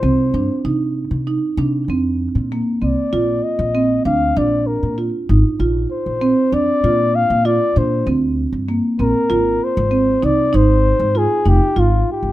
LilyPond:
<<
  \new Staff \with { instrumentName = "Flugelhorn" } { \time 5/4 \key bes \mixolydian \tempo 4 = 97 c''4 r2. r8 d''8~ | d''8 ees''4 f''8 d''8 bes'8 r4. c''8~ | c''8 d''4 f''8 d''8 c''8 r4. bes'8~ | bes'8 c''4 d''8 c''4 aes'8 g'8 f'8 g'8 | }
  \new Staff \with { instrumentName = "Marimba" } { \time 5/4 \key bes \mixolydian c'8 d'8 ees'4 ees'8 d'8 c'4 bes8 c'8 | f'4 c'8 d'8 d'4 f'8 ees'8 f'4 | c'8 d'8 f'4 f'8 d'8 c'4 bes8 c'8 | f'4 c'8 ees'8 ees'4 f'8 ees'8 f'4 | }
  \new Staff \with { instrumentName = "Upright bass" } { \clef bass \time 5/4 \key bes \mixolydian c,8 g,16 r16 c8. c8 r16 c8 f,8. bes,8 r16 c,16 r16 | bes,,8 r16 bes,,8. d,8 bes,,8. bes,8 r16 aes,,16 r16 bes,,8 r16 bes,,16~ | bes,,16 r16 f,16 r16 bes,8. bes,8 r16 bes,8 d,8. g,8 r16 bes,,16 r16 | aes,,8 r16 aes,,8. c,8 aes,,8. aes,8 r16 f,,16 r16 aes,,8 r16 aes,,16 | }
>>